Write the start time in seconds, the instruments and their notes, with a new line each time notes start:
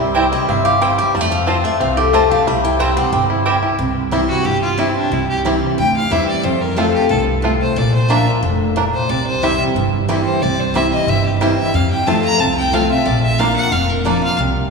Already playing: upright bass C2, five-string banjo G3 E4
0.00 five-string banjo C4
0.14 mandolin C4 E4 C5 G5, five-string banjo E4
0.32 five-string banjo G3, steel-string acoustic guitar D#5
0.48 upright bass G1, five-string banjo C4, steel-string acoustic guitar E5
0.65 five-string banjo G4, steel-string acoustic guitar F5
0.81 five-string banjo G3, mandolin C4 E4 C5 G5, steel-string acoustic guitar G5
0.98 five-string banjo G4, steel-string acoustic guitar G#5
1.14 upright bass F2, five-string banjo G3, steel-string acoustic guitar A5
1.21 five-string banjo A3
1.31 five-string banjo C4, steel-string acoustic guitar F5
1.47 mandolin C4 F4 C5 A5, five-string banjo F4, steel-string acoustic guitar G5
1.64 five-string banjo A3, steel-string acoustic guitar E5
1.80 upright bass C2, five-string banjo C4, steel-string acoustic guitar F5
1.97 five-string banjo G4, steel-string acoustic guitar A4
2.13 five-string banjo A3, mandolin C4 F4 C5 A5, steel-string acoustic guitar C5
2.30 five-string banjo G4, steel-string acoustic guitar F5
2.47 upright bass C2, five-string banjo G3, steel-string acoustic guitar E5
2.64 five-string banjo E4, steel-string acoustic guitar G5
2.79 five-string banjo G3, mandolin C4 E4 C5 G5, steel-string acoustic guitar A5
2.97 five-string banjo C4, steel-string acoustic guitar F#5
3.12 upright bass G1, five-string banjo G3, steel-string acoustic guitar G5
3.30 five-string banjo E4
3.46 mandolin C4 E4 C5 G5, five-string banjo G4
3.63 five-string banjo E4
3.79 upright bass C2, steel-string acoustic guitar C3
4.11 steel-string acoustic guitar E3 G3 C4 E4, five-string banjo G3 C4 E4
4.29 fiddle F#4
4.45 upright bass G1, steel-string acoustic guitar G2, fiddle G4
4.62 fiddle F4
4.77 steel-string acoustic guitar E3 G3 C4 E4, five-string banjo G3 C4 E4, fiddle E4
4.96 fiddle D4
5.11 upright bass C2, steel-string acoustic guitar C3, fiddle E4
5.29 fiddle G4
5.45 steel-string acoustic guitar E3 G3 C4 E4, five-string banjo G3 C4 E4
5.78 upright bass D2, steel-string acoustic guitar G2, fiddle G5
5.96 fiddle F5
6.10 upright bass E2, steel-string acoustic guitar E3 G3 C4 E4, five-string banjo G3 C4 E4, fiddle E5
6.29 fiddle D5
6.43 steel-string acoustic guitar F2, upright bass F2, fiddle C5
6.61 fiddle A#4
6.76 steel-string acoustic guitar F3 A3 C4 F4, five-string banjo A3 C4 F4, fiddle A4
6.94 fiddle G4
7.09 upright bass C2, steel-string acoustic guitar G2, fiddle A4
7.42 steel-string acoustic guitar A2, five-string banjo A3 C4 F4
7.61 fiddle C5
7.76 upright bass A#1, steel-string acoustic guitar A#2, fiddle D5
7.94 fiddle C5
8.09 steel-string acoustic guitar F3 A#3 D4 F4, five-string banjo A#3 D4, fiddle E5
8.26 steel-string acoustic guitar D4 F4
8.43 upright bass F1, steel-string acoustic guitar A2
8.76 steel-string acoustic guitar A#2, five-string banjo A#3 D4
8.94 fiddle C5
9.09 upright bass C2, steel-string acoustic guitar C3, fiddle D5
9.27 fiddle C5
9.42 steel-string acoustic guitar E3 G3 C4 E4, five-string banjo G3 C4 E4, fiddle E5
9.75 upright bass G1, steel-string acoustic guitar G2
10.08 steel-string acoustic guitar E3 G3 C4 E4, five-string banjo G3 C4 E4
10.25 fiddle C5
10.42 upright bass C2, steel-string acoustic guitar C3, fiddle D5
10.60 fiddle C5
10.74 steel-string acoustic guitar E3 G3 C4 E4, five-string banjo G3 C4 E4, fiddle E5
10.93 fiddle D#5
11.07 upright bass G1, steel-string acoustic guitar G2, fiddle E5
11.26 fiddle G4
11.41 steel-string acoustic guitar E3 G3 C4 E4, five-string banjo G3 C4 E4, fiddle C5
11.58 fiddle E5
11.74 upright bass F2, steel-string acoustic guitar F2, fiddle F5
11.90 fiddle G5
12.06 steel-string acoustic guitar F3 A3 C4 F4, five-string banjo A3 C4 F4, fiddle A5
12.24 fiddle A#5
12.39 upright bass C2, steel-string acoustic guitar C3, fiddle A5
12.57 fiddle G5
12.72 steel-string acoustic guitar F3 A3 C4 F4, five-string banjo A3 C4 F4, fiddle F5
12.90 steel-string acoustic guitar C4 F4, fiddle E5
13.06 upright bass A#1, steel-string acoustic guitar A#2, fiddle D5
13.23 fiddle E5
13.38 steel-string acoustic guitar F3 A#3 D4 F4, five-string banjo A#3 D4, fiddle F5
13.56 fiddle F#5
13.72 upright bass F1, steel-string acoustic guitar F2, fiddle F5
13.89 fiddle A#4
14.05 steel-string acoustic guitar F3 A#3 D4 F4, five-string banjo A#3 D4, fiddle D5
14.22 steel-string acoustic guitar D4 F4, fiddle F5
14.38 upright bass C2, steel-string acoustic guitar C3